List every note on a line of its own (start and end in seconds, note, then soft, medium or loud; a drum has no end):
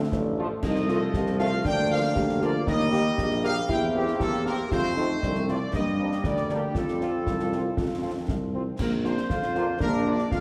0.00 0.59 F3 medium
0.00 0.59 A3 medium
0.00 0.15 C4 medium
0.12 0.55 A1 medium
0.12 0.46 D4 medium
0.12 concert bass drum medium
0.12 snare medium
0.38 0.48 F3 medium
0.38 0.47 A3 medium
0.38 0.48 F4 medium
0.62 1.06 C2 medium
0.62 2.63 F3 medium
0.62 1.61 A3 medium
0.62 0.88 D#4 medium
0.62 1.35 D#5 loud
0.62 concert bass drum medium
0.62 snare medium
0.62 crash medium
0.76 snare medium
0.89 0.98 F3 medium
0.89 0.98 A3 medium
0.89 1.16 F4 medium
0.89 0.98 F4 medium
0.89 snare medium
1.14 1.57 C2 medium
1.14 1.42 G4 medium
1.14 concert bass drum medium
1.14 snare medium
1.27 snare soft
1.39 1.49 F3 medium
1.39 1.49 A3 medium
1.39 1.49 F4 medium
1.39 1.65 F4 medium
1.39 1.63 F5 loud
1.39 snare medium
1.64 2.08 D2 medium
1.64 3.68 A#3 medium
1.64 2.17 D4 loud
1.64 1.89 G5 loud
1.64 concert bass drum medium
1.64 snare medium
1.91 2.00 F3 medium
1.91 2.00 A#3 medium
1.91 2.00 F4 medium
1.91 2.38 F5 loud
2.03 snare medium
2.15 2.59 D2 medium
2.15 2.44 G4 medium
2.15 concert bass drum medium
2.15 snare medium
2.29 snare medium
2.42 2.51 F3 medium
2.42 2.51 A#3 medium
2.42 2.51 F4 medium
2.42 2.67 F4 medium
2.42 2.68 D5 loud
2.42 snare medium
2.67 3.10 D#2 medium
2.67 3.65 G3 medium
2.67 2.91 D#4 medium
2.67 3.40 D#5 loud
2.67 concert bass drum medium
2.67 snare medium
2.80 snare medium
2.92 3.02 A#3 medium
2.92 3.65 G4 medium
2.92 3.02 G4 medium
2.92 snare medium
3.18 3.61 A#1 medium
3.18 concert bass drum medium
3.18 snare medium
3.31 snare soft
3.43 3.53 A#3 medium
3.43 3.53 G4 medium
3.43 3.68 F5 loud
3.43 snare soft
3.69 4.12 E2 medium
3.69 4.71 A#3 medium
3.69 5.57 C4 medium
3.69 4.16 E4 loud
3.69 3.81 G5 loud
3.69 concert bass drum medium
3.69 snare medium
3.95 4.04 A#3 medium
3.95 4.04 C4 medium
3.95 4.04 G4 medium
3.95 4.19 G4 loud
4.07 snare medium
4.19 4.59 E2 medium
4.19 4.67 G4 medium
4.19 4.44 A4 loud
4.19 concert bass drum medium
4.19 snare medium
4.33 snare medium
4.45 4.55 A#3 medium
4.45 4.55 C4 medium
4.45 4.55 G4 medium
4.45 4.69 A#4 loud
4.45 snare medium
4.71 5.14 F2 medium
4.71 5.57 A3 medium
4.71 4.95 F4 loud
4.71 5.44 C5 loud
4.71 concert bass drum medium
4.71 snare medium
4.71 crash soft
4.84 snare medium
4.96 5.06 A3 medium
4.96 5.06 C4 medium
4.96 5.20 D#4 medium
4.96 5.06 F4 medium
4.96 snare medium
5.21 5.65 C2 medium
5.21 5.33 D4 medium
5.21 concert bass drum medium
5.21 snare medium
5.35 snare medium
5.48 5.58 A3 medium
5.48 5.58 C4 medium
5.48 5.60 C4 medium
5.48 5.58 F4 medium
5.48 5.74 D5 loud
5.48 snare medium
5.73 6.16 G2 medium
5.73 7.74 G3 medium
5.73 6.72 A#3 medium
5.73 5.85 A#3 medium
5.73 6.21 D#5 loud
5.73 concert bass drum medium
5.73 snare medium
5.99 6.09 G3 medium
5.99 6.08 A#3 medium
5.99 6.11 C4 medium
5.99 6.09 D4 medium
6.12 snare medium
6.24 6.67 D2 medium
6.24 6.76 D4 medium
6.24 6.50 D5 medium
6.24 concert bass drum medium
6.24 snare medium
6.36 snare soft
6.49 6.59 G3 medium
6.49 6.60 A#3 medium
6.49 6.60 D4 medium
6.49 6.76 G4 medium
6.49 snare medium
6.74 7.18 F2 medium
6.74 8.50 C4 medium
6.74 8.53 F4 medium
6.74 8.25 A4 medium
6.74 concert bass drum medium
6.74 snare medium
6.88 snare medium
7.01 7.11 C4 medium
7.01 7.11 F4 medium
7.01 snare medium
7.26 7.68 C2 medium
7.26 concert bass drum medium
7.26 snare medium
7.40 snare soft
7.52 7.61 C4 medium
7.52 7.61 F4 medium
7.52 snare medium
7.76 8.19 F2 medium
7.76 8.54 F3 medium
7.76 concert bass drum medium
7.76 snare medium
8.02 8.12 C4 soft
8.02 8.11 F4 soft
8.28 8.71 C2 medium
8.28 concert bass drum medium
8.28 snare medium
8.54 8.63 C4 medium
8.54 8.63 F4 medium
8.79 9.21 A#1 medium
8.79 8.91 A#3 medium
8.79 8.91 A#4 medium
8.79 concert bass drum medium
8.79 snare medium
8.79 crash medium
9.04 9.14 A#3 medium
9.04 9.77 C4 medium
9.04 9.14 D4 medium
9.04 9.13 F4 medium
9.04 9.77 C5 medium
9.04 snare medium
9.17 snare medium
9.29 9.73 F2 medium
9.29 9.77 F4 medium
9.29 concert bass drum medium
9.29 snare medium
9.42 snare medium
9.55 9.65 A#3 medium
9.55 9.65 D4 medium
9.55 9.65 F4 medium
9.55 snare soft
9.80 10.24 A#1 medium
9.80 10.04 A#3 loud
9.80 10.28 D4 medium
9.80 10.05 A#4 loud
9.80 concert bass drum medium
9.80 snare medium
10.06 10.16 A#3 medium
10.06 10.18 D4 medium
10.06 10.16 D4 medium
10.06 10.16 F4 medium
10.06 10.33 D5 loud
10.19 snare soft
10.31 10.40 F2 medium
10.31 10.40 A#3 medium
10.31 10.40 F4 medium
10.31 10.40 F5 loud
10.31 concert bass drum medium
10.31 snare medium